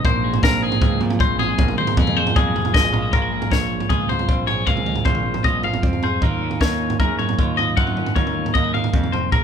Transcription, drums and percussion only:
0.05 kick, floor tom
0.34 floor tom
0.43 kick, snare
0.72 floor tom
0.81 kick, floor tom
1.01 floor tom
1.10 floor tom
1.20 kick
1.40 floor tom
1.58 kick, floor tom
1.68 floor tom
1.78 mid tom
1.87 floor tom
1.97 kick, floor tom, mid tom
2.07 mid tom
2.27 floor tom
2.36 kick, floor tom
2.56 floor tom
2.65 floor tom
2.74 kick, snare
2.94 floor tom
3.13 kick, floor tom
3.42 floor tom
3.52 kick, snare
3.80 floor tom
3.90 kick, floor tom
4.10 floor tom
4.19 floor tom
4.29 kick
4.48 floor tom
4.67 kick, floor tom
4.77 floor tom
4.86 mid tom
4.96 floor tom
5.05 kick, floor tom, mid tom
5.15 mid tom
5.34 floor tom
5.44 kick, floor tom
5.63 floor tom
5.74 floor tom
5.83 kick, mid tom
5.93 floor tom
6.03 floor tom
6.22 kick, floor tom
6.51 floor tom
6.61 kick, snare
6.90 floor tom
7.00 kick, floor tom
7.19 floor tom
7.29 floor tom
7.39 kick
7.59 floor tom
7.77 kick, floor tom
7.87 floor tom
7.97 mid tom
8.06 floor tom
8.16 kick, floor tom, mid tom
8.27 mid tom
8.46 floor tom
8.55 kick, floor tom
8.75 floor tom
8.84 floor tom
8.93 kick, mid tom
9.03 floor tom
9.13 floor tom
9.32 kick, floor tom

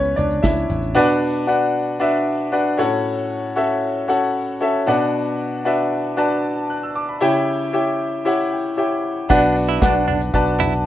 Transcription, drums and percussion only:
0.04 shaker
0.17 closed hi-hat, floor tom
0.31 shaker
0.43 kick, snare, closed hi-hat, shaker
0.57 shaker
0.70 closed hi-hat, floor tom
0.83 shaker
9.30 kick, closed hi-hat, shaker
9.44 shaker
9.56 closed hi-hat, shaker
9.70 shaker
9.82 kick, snare, closed hi-hat, shaker
9.95 shaker
10.08 closed hi-hat, floor tom, shaker
10.21 closed hi-hat, shaker
10.34 kick, closed hi-hat, shaker
10.47 closed hi-hat, shaker
10.60 closed hi-hat, floor tom, shaker
10.73 shaker

